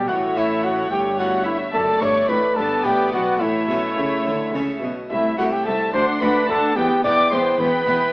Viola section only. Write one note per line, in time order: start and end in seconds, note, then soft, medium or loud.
0.08 1.70 A3 soft
1.73 2.53 A3 medium
2.56 3.39 B3 medium
3.40 4.90 A3 medium
5.10 5.37 A3 medium
5.38 5.65 A3 soft
5.66 5.94 A3 soft
5.94 6.21 D4 soft
6.22 6.48 D4 soft
6.50 6.77 D4 soft
6.77 7.04 B3 medium
7.05 7.31 B3 soft
7.32 7.59 B3 soft
7.60 7.85 B3 medium
7.86 8.12 B3 soft